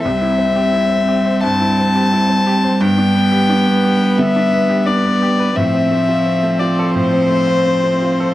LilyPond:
<<
  \new Staff \with { instrumentName = "Violin" } { \time 4/4 \key c \major \tempo 4 = 87 e''2 a''2 | g''2 e''4 d''4 | e''4. d''8 c''2 | }
  \new Staff \with { instrumentName = "Grand piano" } { \time 4/4 \key c \major c,16 e'16 c'16 g'16 e'16 c'16 g'16 c''16 g,16 e'16 c'16 g'16 e'16 c'16 g'16 c''16 | g,16 d'16 b16 g'16 d'16 b16 g'16 b'16 d16 d'16 b16 g'16 d'16 b16 g'16 b'16 | a,16 c'16 a16 f'16 c'16 a16 f'16 a'16 a,16 c'16 a16 f'16 c'16 a16 f'16 a'16 | }
  \new Staff \with { instrumentName = "Viola" } { \time 4/4 \key c \major c'1 | b1 | c'1 | }
  \new Staff \with { instrumentName = "Cello" } { \clef bass \time 4/4 \key c \major g1~ | g1 | f1 | }
>>